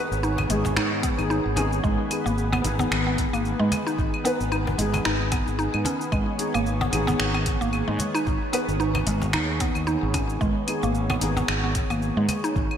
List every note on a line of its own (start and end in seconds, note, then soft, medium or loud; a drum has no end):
0.00 12.77 D#3 medium
0.00 0.15 B3 medium
0.00 12.77 B3 medium
0.00 0.16 D#4 medium
0.00 12.77 G#4 medium
0.00 0.16 B4 loud
0.00 1.83 C#5 medium
0.11 0.45 G#1 medium
0.11 shaker soft
0.23 0.32 D#4 loud
0.23 shaker soft
0.38 cajon bass medium
0.38 claves medium
0.48 0.78 G#1 medium
0.48 0.65 G#3 medium
0.48 1.15 B3 medium
0.48 1.16 D#4 medium
0.48 cajon slap soft
0.48 closed hi-hat medium
0.48 shaker medium
0.52 1.17 G#4 medium
0.65 cajon bass medium
0.65 cajon slap medium
0.65 shaker soft
0.77 1.13 G#2 medium
0.77 0.91 D#4 medium
0.77 finger snap medium
0.77 claves medium
0.77 shaker soft
1.03 1.18 B3 medium
1.03 kick loud
1.03 closed hi-hat medium
1.03 shaker medium
1.17 1.38 G#1 medium
1.17 1.54 B3 medium
1.17 1.54 D#4 medium
1.17 1.55 G#4 loud
1.17 claves medium
1.17 shaker soft
1.30 1.39 D#4 loud
1.30 shaker soft
1.46 1.79 G#1 medium
1.56 2.07 B3 medium
1.56 1.72 C#4 medium
1.56 2.08 D#4 medium
1.56 2.08 G#4 loud
1.56 cajon bass medium
1.56 closed hi-hat medium
1.56 claves medium
1.56 shaker medium
1.73 shaker soft
1.83 1.96 G#1 medium
1.83 1.98 G#3 loud
1.83 6.11 B4 medium
1.83 kick loud
1.83 shaker soft
2.09 2.23 B3 medium
2.09 2.24 D#4 medium
2.09 2.24 G#4 medium
2.09 closed hi-hat medium
2.09 claves medium
2.09 shaker medium
2.26 2.60 G#1 medium
2.26 2.51 A#3 loud
2.26 shaker soft
2.38 shaker soft
2.52 2.64 B3 loud
2.52 cajon bass medium
2.52 claves medium
2.62 2.86 G#1 medium
2.62 4.21 B3 medium
2.62 4.22 D#4 medium
2.62 4.23 G#4 medium
2.62 cajon slap soft
2.62 closed hi-hat medium
2.62 shaker medium
2.79 3.05 B3 loud
2.79 cajon bass medium
2.79 cajon slap medium
2.79 shaker soft
2.91 3.27 G#1 medium
2.91 finger snap medium
2.91 claves medium
2.91 shaker soft
3.07 3.32 B3 medium
3.18 kick loud
3.18 closed hi-hat medium
3.18 shaker medium
3.33 3.53 G#1 medium
3.33 3.59 A#3 medium
3.33 claves medium
3.33 shaker soft
3.45 shaker soft
3.59 3.69 G#2 medium
3.59 3.71 G#3 loud
3.72 cajon bass medium
3.72 closed hi-hat medium
3.72 claves medium
3.72 shaker medium
3.87 4.24 D#4 loud
3.87 shaker soft
3.98 4.10 G#1 medium
3.98 kick loud
3.98 shaker soft
4.14 claves medium
4.24 4.44 B3 medium
4.24 4.34 B3 loud
4.24 4.45 D#4 medium
4.24 4.45 B4 medium
4.24 closed hi-hat medium
4.24 shaker medium
4.41 4.74 G#1 medium
4.41 shaker soft
4.52 4.61 D#4 loud
4.52 claves medium
4.52 shaker soft
4.67 cajon bass medium
4.77 5.00 G#1 medium
4.77 4.93 G#3 medium
4.77 6.36 B3 medium
4.77 6.37 D#4 medium
4.77 cajon slap soft
4.77 closed hi-hat medium
4.77 shaker medium
4.81 6.38 G#4 medium
4.94 cajon bass medium
4.94 cajon slap medium
4.94 claves medium
4.94 shaker soft
5.05 5.42 G#1 medium
5.05 5.20 D#4 loud
5.05 finger snap medium
5.05 shaker soft
5.32 5.47 B3 medium
5.32 kick loud
5.32 closed hi-hat medium
5.32 claves medium
5.32 shaker medium
5.47 5.67 G#1 medium
5.47 shaker soft
5.59 5.68 D#4 loud
5.59 shaker soft
5.74 5.83 G#2 medium
5.74 claves medium
5.85 6.00 C#4 medium
5.85 cajon bass medium
5.85 closed hi-hat medium
5.85 shaker medium
6.01 shaker soft
6.12 6.24 G#1 loud
6.12 6.27 G#3 loud
6.12 10.40 C#5 medium
6.12 kick loud
6.12 claves medium
6.12 shaker soft
6.38 6.52 B3 medium
6.38 6.52 D#4 medium
6.38 6.53 G#4 medium
6.38 closed hi-hat medium
6.38 shaker medium
6.54 6.89 G#1 medium
6.54 6.80 A#3 loud
6.54 claves medium
6.54 shaker soft
6.66 shaker soft
6.81 6.92 B3 loud
6.81 cajon bass medium
6.90 7.14 G#1 medium
6.90 8.50 B3 medium
6.90 8.51 D#4 medium
6.90 8.52 G#4 medium
6.90 cajon slap soft
6.90 closed hi-hat medium
6.90 claves medium
6.90 shaker medium
7.07 7.33 B3 loud
7.07 cajon bass medium
7.07 cajon slap medium
7.07 shaker soft
7.20 7.56 G#1 medium
7.20 finger snap medium
7.20 shaker soft
7.34 7.60 B3 medium
7.34 claves medium
7.46 kick medium
7.46 closed hi-hat medium
7.46 shaker medium
7.61 7.81 G#1 medium
7.61 7.87 A#3 loud
7.61 shaker soft
7.73 claves medium
7.73 shaker soft
7.88 7.97 G#2 medium
7.88 7.99 G#3 medium
7.99 cajon bass medium
7.99 closed hi-hat medium
7.99 shaker medium
8.14 8.52 D#4 loud
8.14 claves medium
8.14 shaker soft
8.27 8.38 G#1 medium
8.27 kick loud
8.27 shaker soft
8.52 8.73 B3 medium
8.52 8.62 B3 loud
8.52 8.73 D#4 medium
8.52 8.73 B4 loud
8.52 cajon slap soft
8.52 closed hi-hat medium
8.52 claves medium
8.52 shaker medium
8.68 9.02 G#1 medium
8.68 cajon slap soft
8.68 shaker soft
8.80 8.89 D#4 medium
8.80 shaker soft
8.95 cajon bass medium
8.95 claves medium
9.07 9.35 G#1 medium
9.07 9.22 G#3 medium
9.07 cajon slap soft
9.07 closed hi-hat medium
9.07 shaker medium
9.22 cajon bass medium
9.22 cajon slap medium
9.22 shaker soft
9.33 9.70 D#2 medium
9.33 9.48 D#4 medium
9.33 finger snap medium
9.33 claves medium
9.33 shaker soft
9.60 9.75 B3 loud
9.60 kick medium
9.60 closed hi-hat medium
9.60 shaker medium
9.75 9.95 D#2 medium
9.75 claves medium
9.75 shaker soft
9.87 9.96 D#4 loud
9.87 shaker soft
10.03 10.37 G#1 medium
10.14 10.29 C#4 medium
10.14 cajon bass medium
10.14 kick medium
10.14 closed hi-hat medium
10.14 claves medium
10.14 shaker medium
10.29 shaker soft
10.41 10.53 G#1 medium
10.41 10.55 G#3 loud
10.41 12.77 C#5 medium
10.41 kick loud
10.41 shaker soft
10.67 10.80 B3 medium
10.67 10.81 D#4 medium
10.67 10.81 G#4 medium
10.67 closed hi-hat medium
10.67 claves medium
10.67 shaker medium
10.83 11.17 G#1 medium
10.83 11.08 A#3 medium
10.83 shaker soft
10.95 shaker soft
11.10 11.21 B3 loud
11.10 cajon bass loud
11.10 claves medium
11.19 11.43 G#1 medium
11.19 12.77 B3 medium
11.19 12.77 D#4 medium
11.19 cajon slap soft
11.19 closed hi-hat medium
11.19 shaker medium
11.23 12.77 G#4 medium
11.37 11.62 B3 loud
11.37 cajon bass medium
11.37 cajon slap medium
11.37 shaker soft
11.48 11.84 G#1 medium
11.48 finger snap medium
11.48 claves medium
11.48 shaker soft
11.64 11.89 B3 medium
11.75 kick loud
11.75 closed hi-hat medium
11.75 shaker medium
11.90 12.10 G#1 medium
11.90 12.16 A#3 medium
11.90 claves medium
11.90 shaker soft
12.02 shaker soft
12.17 12.26 G#2 medium
12.17 12.28 G#3 medium
12.29 cajon bass medium
12.29 closed hi-hat medium
12.29 claves medium
12.29 shaker medium
12.44 12.77 D#4 loud
12.44 shaker soft
12.56 12.67 G#1 loud
12.56 kick loud
12.56 shaker soft
12.71 claves medium